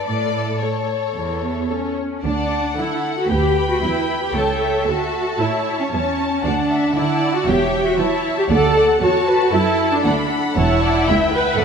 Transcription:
0.06 cello section A2, violin section A4 D5
0.60 viola section A3 A4, violin section C#5
1.16 cello section E2
1.70 viola section A3 C#4 A4
2.23 double bass section D2, cello section D2, viola section D4, violin section D5 F#5 A5
2.77 cello section D3, viola section E4, violin section A4 F#5
3.17 viola section F#4
3.29 cello section D2, double bass section D2, viola section G4, violin section B4 G5 B5
3.70 viola section F#4
3.82 cello section E2, viola section E4
4.22 viola section G4
4.34 double bass section C#2, cello section C#2, viola section A4, violin section C#5 A5
4.60 violin section E5
4.87 cello section D2, viola section F#4, violin section A4 A5
5.39 cello section A2, viola section E4, violin section C#5 E5
5.79 viola section C#4
5.91 cello section E2, viola section C#4, violin section A5
6.44 double bass section D2, cello section D2, viola section D4, violin section D5 F#5
6.69 violin section E5
6.96 cello section D3, viola section E4, violin section D5 F#5 A5
7.34 viola section F#4
7.47 double bass section E1, cello section E2, viola section G4, violin section C#5 E5 G5
7.86 viola section F#4
7.99 cello section E3, viola section E4, violin section C#5 A5
8.38 viola section G4
8.50 double bass section D2, cello section D2, viola section A4, violin section D5 F#5 A5
8.76 violin section D5
9.01 cello section E2, viola section F#4, violin section C#5 A5
9.27 violin section B4
9.52 cello section F#2, viola section E4, violin section A4 A5
9.92 viola section D4
10.03 cello section D2, viola section D4, violin section F#5 B5
10.30 violin section F#5
10.55 double bass section E1, cello section E2, viola section E4, violin section C#5 A5
10.82 violin section D5
11.07 cello section C#2, violin section E5 G5
11.33 viola section B4, violin section F#5
11.59 double bass section F#1, cello section F#2, viola section A4, violin section D5 F#5

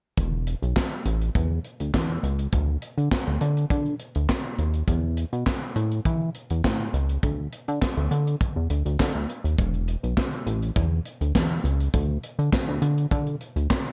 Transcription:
0.17 analog synth bass E1, kick, closed hi-hat
0.47 closed hi-hat
0.62 analog synth bass B1, closed hi-hat
0.76 kick, snare, clap
0.92 closed hi-hat
1.06 analog synth bass A1, closed hi-hat
1.21 closed hi-hat
1.35 analog synth bass E2, kick, closed hi-hat
1.64 closed hi-hat
1.80 analog synth bass D2, closed hi-hat
1.94 analog synth bass E2, kick, snare, clap
2.10 closed hi-hat
2.23 analog synth bass C#2, closed hi-hat
2.39 closed hi-hat
2.53 analog synth bass D2, kick, closed hi-hat
2.82 closed hi-hat
2.98 analog synth bass D3, closed hi-hat
3.12 kick, snare, clap
3.27 analog synth bass D2, closed hi-hat
3.41 analog synth bass D3, closed hi-hat
3.57 closed hi-hat
3.70 analog synth bass D3, kick, closed hi-hat
3.86 closed hi-hat
4.00 closed hi-hat
4.15 analog synth bass D2, closed hi-hat
4.29 kick, snare, clap
4.59 analog synth bass D#2, closed hi-hat
4.74 closed hi-hat
4.87 analog synth bass E2, kick, closed hi-hat
5.17 closed hi-hat
5.33 analog synth bass B2, closed hi-hat
5.46 kick, snare, clap
5.76 analog synth bass A2, closed hi-hat
5.92 closed hi-hat
6.05 analog synth bass E3, kick, closed hi-hat
6.35 closed hi-hat
6.50 analog synth bass E2, closed hi-hat
6.64 analog synth bass A2, kick, snare, clap
6.80 closed hi-hat
6.93 analog synth bass C#2, closed hi-hat
7.09 closed hi-hat
7.23 analog synth bass D2, kick, closed hi-hat
7.53 closed hi-hat
7.68 analog synth bass D3, closed hi-hat
7.82 kick, snare, clap
7.97 analog synth bass D2, closed hi-hat
8.11 analog synth bass D3, closed hi-hat
8.27 closed hi-hat
8.41 kick, closed hi-hat
8.56 analog synth bass E2
8.70 analog synth bass D2, closed hi-hat
8.85 analog synth bass D2, closed hi-hat
9.00 analog synth bass D3, kick, snare, clap
9.15 analog synth bass D2
9.30 closed hi-hat
9.44 analog synth bass D#2, closed hi-hat
9.59 analog synth bass E1, kick, closed hi-hat
9.74 closed hi-hat
9.88 closed hi-hat
10.03 analog synth bass B1, closed hi-hat
10.17 kick, snare, clap
10.33 closed hi-hat
10.47 analog synth bass A1, closed hi-hat
10.63 closed hi-hat
10.76 analog synth bass E2, kick, closed hi-hat
11.06 closed hi-hat
11.21 analog synth bass D2, closed hi-hat
11.35 analog synth bass E2, kick, snare, clap
11.64 analog synth bass C#2, closed hi-hat
11.80 closed hi-hat
11.94 analog synth bass D2, kick, closed hi-hat
12.24 closed hi-hat
12.39 analog synth bass D3, closed hi-hat
12.53 kick, snare, clap
12.68 analog synth bass D2, closed hi-hat
12.82 analog synth bass D3, closed hi-hat
12.98 closed hi-hat
13.11 analog synth bass D3, kick, closed hi-hat
13.27 closed hi-hat
13.41 closed hi-hat
13.56 analog synth bass D2, closed hi-hat
13.70 kick, snare, clap
13.86 closed hi-hat

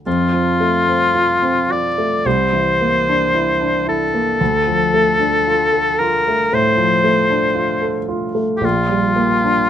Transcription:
0.06 grand piano F2, oboe F4
0.33 grand piano F3
0.61 grand piano A3
0.88 grand piano C4
1.15 grand piano F4
1.42 grand piano C4
1.70 grand piano F4, oboe D5
1.98 grand piano A3
2.26 grand piano C2, oboe C5
2.53 grand piano E3
2.81 grand piano A#3
3.09 grand piano D4
3.34 grand piano E4
3.61 grand piano D4
3.87 grand piano E4, oboe A4
4.14 grand piano A#3
4.41 grand piano D2
4.67 grand piano F3
4.94 grand piano A3
5.20 grand piano D4
5.47 grand piano F4
5.72 grand piano A4
5.99 grand piano F4, oboe A#4
6.28 grand piano A3
6.53 grand piano A2, oboe C5
6.77 grand piano F3
7.04 grand piano A3
7.30 grand piano D4
7.55 grand piano F4
7.82 grand piano A4
8.08 grand piano F4
8.35 grand piano A3
8.57 grand piano A#1, oboe G4
8.64 oboe F4
8.89 grand piano G3
9.16 grand piano A#3
9.44 grand piano D4

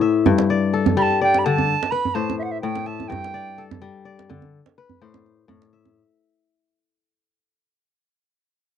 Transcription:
Already playing: kora A2 B4 C5
0.01 kora E5
0.26 kora G2, djembe bass
0.38 djembe slap
0.50 kora D5
0.73 kora A4
0.86 djembe slap, djembe tone, djembe bass
0.97 kora G3, flute B5
1.02 flute A5
1.10 djembe slap
1.21 kora D5, flute G5
1.34 flute B5, djembe slap
1.44 kora D3, flute A5
1.58 djembe slap, djembe tone
1.83 djembe slap
1.91 kora B4, flute B5, djembe slap
2.05 djembe bass
2.14 kora A2 C5, flute A5, djembe slap
2.30 djembe slap, djembe tone
2.39 flute E5
2.44 flute F#5
2.51 flute E5
2.61 kora A2, flute G5
2.75 djembe slap
2.86 kora E5, flute A5, djembe slap
3.00 djembe tone
3.08 kora G2, flute G5
3.12 djembe slap, djembe bass
3.24 djembe slap
3.34 kora D5
3.48 djembe slap
3.58 kora A4
3.71 djembe slap, djembe tone, djembe bass
3.82 kora G3, djembe slap
4.05 kora D5
4.19 djembe slap
4.30 kora D3, djembe bass
4.42 djembe slap, djembe tone
4.66 djembe slap
4.78 kora B4
4.90 djembe bass
5.02 kora A2 C5
5.14 djembe slap, djembe tone
5.26 djembe slap
5.48 kora A2, djembe bass
5.62 djembe slap
5.73 kora E5
5.85 djembe tone

